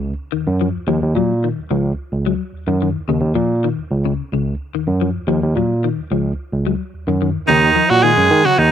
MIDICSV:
0, 0, Header, 1, 5, 480
1, 0, Start_track
1, 0, Key_signature, -6, "minor"
1, 0, Tempo, 550459
1, 771, Time_signature, 4, 2, 24, 8
1, 7600, End_track
2, 0, Start_track
2, 0, Title_t, "Tenor saxophone"
2, 0, Program_c, 0, 66
2, 6522, Note_on_c, 0, 63, 97
2, 6887, Note_on_c, 0, 66, 95
2, 6900, Note_off_c, 0, 63, 0
2, 6998, Note_on_c, 0, 68, 102
2, 7011, Note_off_c, 0, 66, 0
2, 7371, Note_on_c, 0, 66, 91
2, 7384, Note_off_c, 0, 68, 0
2, 7485, Note_on_c, 0, 63, 97
2, 7498, Note_off_c, 0, 66, 0
2, 7600, Note_off_c, 0, 63, 0
2, 7600, End_track
3, 0, Start_track
3, 0, Title_t, "Trombone"
3, 0, Program_c, 1, 57
3, 6517, Note_on_c, 1, 51, 96
3, 6879, Note_on_c, 1, 54, 84
3, 6892, Note_off_c, 1, 51, 0
3, 7003, Note_on_c, 1, 56, 91
3, 7016, Note_off_c, 1, 54, 0
3, 7379, Note_on_c, 1, 54, 79
3, 7392, Note_off_c, 1, 56, 0
3, 7489, Note_on_c, 1, 51, 82
3, 7502, Note_off_c, 1, 54, 0
3, 7600, Note_off_c, 1, 51, 0
3, 7600, End_track
4, 0, Start_track
4, 0, Title_t, "Clean electric guitar"
4, 0, Program_c, 2, 27
4, 281, Note_on_c, 2, 51, 79
4, 420, Note_off_c, 2, 51, 0
4, 531, Note_on_c, 2, 53, 71
4, 668, Note_off_c, 2, 53, 0
4, 766, Note_on_c, 2, 53, 82
4, 904, Note_off_c, 2, 53, 0
4, 1016, Note_on_c, 2, 54, 72
4, 1152, Note_off_c, 2, 54, 0
4, 1256, Note_on_c, 2, 51, 76
4, 1392, Note_off_c, 2, 51, 0
4, 1488, Note_on_c, 2, 53, 67
4, 1626, Note_off_c, 2, 53, 0
4, 1974, Note_on_c, 2, 54, 71
4, 2111, Note_off_c, 2, 54, 0
4, 2337, Note_on_c, 2, 51, 63
4, 2404, Note_off_c, 2, 51, 0
4, 2459, Note_on_c, 2, 51, 70
4, 2595, Note_off_c, 2, 51, 0
4, 2694, Note_on_c, 2, 49, 90
4, 2831, Note_off_c, 2, 49, 0
4, 2924, Note_on_c, 2, 53, 70
4, 3064, Note_off_c, 2, 53, 0
4, 3176, Note_on_c, 2, 51, 79
4, 3313, Note_off_c, 2, 51, 0
4, 3534, Note_on_c, 2, 49, 77
4, 3672, Note_off_c, 2, 49, 0
4, 3780, Note_on_c, 2, 49, 63
4, 3916, Note_off_c, 2, 49, 0
4, 4139, Note_on_c, 2, 51, 71
4, 4274, Note_off_c, 2, 51, 0
4, 4372, Note_on_c, 2, 53, 74
4, 4509, Note_off_c, 2, 53, 0
4, 4605, Note_on_c, 2, 53, 89
4, 4744, Note_off_c, 2, 53, 0
4, 4856, Note_on_c, 2, 54, 70
4, 4992, Note_off_c, 2, 54, 0
4, 5095, Note_on_c, 2, 51, 75
4, 5231, Note_off_c, 2, 51, 0
4, 5334, Note_on_c, 2, 53, 66
4, 5470, Note_off_c, 2, 53, 0
4, 5812, Note_on_c, 2, 54, 64
4, 5949, Note_off_c, 2, 54, 0
4, 6176, Note_on_c, 2, 51, 66
4, 6242, Note_off_c, 2, 51, 0
4, 6294, Note_on_c, 2, 51, 69
4, 6429, Note_off_c, 2, 51, 0
4, 6520, Note_on_c, 2, 49, 88
4, 6659, Note_off_c, 2, 49, 0
4, 6764, Note_on_c, 2, 53, 73
4, 6901, Note_off_c, 2, 53, 0
4, 7006, Note_on_c, 2, 51, 82
4, 7142, Note_off_c, 2, 51, 0
4, 7368, Note_on_c, 2, 49, 78
4, 7503, Note_off_c, 2, 49, 0
4, 7600, End_track
5, 0, Start_track
5, 0, Title_t, "Tine electric piano"
5, 0, Program_c, 3, 4
5, 0, Note_on_c, 3, 37, 76
5, 109, Note_off_c, 3, 37, 0
5, 290, Note_on_c, 3, 39, 36
5, 405, Note_on_c, 3, 42, 86
5, 412, Note_off_c, 3, 39, 0
5, 589, Note_off_c, 3, 42, 0
5, 641, Note_on_c, 3, 39, 34
5, 703, Note_off_c, 3, 39, 0
5, 765, Note_on_c, 3, 39, 104
5, 860, Note_off_c, 3, 39, 0
5, 896, Note_on_c, 3, 39, 82
5, 985, Note_off_c, 3, 39, 0
5, 1006, Note_on_c, 3, 46, 89
5, 1282, Note_off_c, 3, 46, 0
5, 1373, Note_on_c, 3, 39, 31
5, 1433, Note_off_c, 3, 39, 0
5, 1486, Note_on_c, 3, 37, 99
5, 1670, Note_off_c, 3, 37, 0
5, 1846, Note_on_c, 3, 37, 81
5, 2031, Note_off_c, 3, 37, 0
5, 2208, Note_on_c, 3, 39, 37
5, 2329, Note_on_c, 3, 42, 90
5, 2333, Note_off_c, 3, 39, 0
5, 2513, Note_off_c, 3, 42, 0
5, 2568, Note_on_c, 3, 39, 36
5, 2629, Note_off_c, 3, 39, 0
5, 2680, Note_on_c, 3, 39, 91
5, 2778, Note_off_c, 3, 39, 0
5, 2798, Note_on_c, 3, 39, 81
5, 2895, Note_off_c, 3, 39, 0
5, 2921, Note_on_c, 3, 46, 92
5, 3199, Note_off_c, 3, 46, 0
5, 3293, Note_on_c, 3, 39, 34
5, 3353, Note_off_c, 3, 39, 0
5, 3411, Note_on_c, 3, 37, 94
5, 3594, Note_off_c, 3, 37, 0
5, 3773, Note_on_c, 3, 37, 78
5, 3956, Note_off_c, 3, 37, 0
5, 4131, Note_on_c, 3, 39, 35
5, 4252, Note_on_c, 3, 42, 86
5, 4256, Note_off_c, 3, 39, 0
5, 4435, Note_off_c, 3, 42, 0
5, 4495, Note_on_c, 3, 39, 36
5, 4555, Note_off_c, 3, 39, 0
5, 4602, Note_on_c, 3, 39, 101
5, 4699, Note_off_c, 3, 39, 0
5, 4734, Note_on_c, 3, 39, 81
5, 4825, Note_off_c, 3, 39, 0
5, 4843, Note_on_c, 3, 46, 86
5, 5120, Note_off_c, 3, 46, 0
5, 5209, Note_on_c, 3, 39, 33
5, 5270, Note_off_c, 3, 39, 0
5, 5325, Note_on_c, 3, 37, 88
5, 5509, Note_off_c, 3, 37, 0
5, 5690, Note_on_c, 3, 37, 78
5, 5873, Note_off_c, 3, 37, 0
5, 6049, Note_on_c, 3, 39, 34
5, 6171, Note_on_c, 3, 42, 84
5, 6172, Note_off_c, 3, 39, 0
5, 6353, Note_off_c, 3, 42, 0
5, 6414, Note_on_c, 3, 39, 34
5, 6473, Note_off_c, 3, 39, 0
5, 6529, Note_on_c, 3, 39, 106
5, 6710, Note_off_c, 3, 39, 0
5, 6891, Note_on_c, 3, 46, 82
5, 7071, Note_off_c, 3, 46, 0
5, 7123, Note_on_c, 3, 42, 81
5, 7214, Note_off_c, 3, 42, 0
5, 7244, Note_on_c, 3, 51, 96
5, 7336, Note_off_c, 3, 51, 0
5, 7483, Note_on_c, 3, 39, 98
5, 7600, Note_off_c, 3, 39, 0
5, 7600, End_track
0, 0, End_of_file